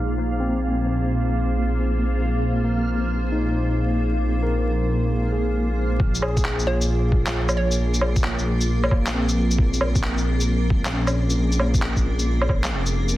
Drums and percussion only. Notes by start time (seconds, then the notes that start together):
6.00 kick
6.15 shaker
6.22 low woodblock
6.37 kick, shaker
6.44 clap
6.59 shaker
6.82 shaker
7.12 kick
7.26 clap, shaker
7.49 low woodblock, shaker
7.71 shaker
7.94 shaker
8.01 low woodblock
8.16 kick, shaker
8.24 clap
8.39 shaker
8.61 shaker
8.84 low woodblock
8.91 kick, low woodblock
9.06 clap, shaker
9.29 shaker
9.51 shaker
9.58 kick
9.74 shaker
9.81 low woodblock
9.95 kick, shaker
10.03 clap
10.18 shaker
10.40 shaker
10.70 kick
10.85 clap, shaker
11.07 low woodblock, shaker
11.30 shaker
11.52 shaker
11.60 low woodblock
11.74 kick, shaker
11.82 clap
11.96 kick, shaker
12.19 shaker
12.41 low woodblock
12.49 kick, low woodblock
12.64 clap, shaker
12.86 shaker
13.09 shaker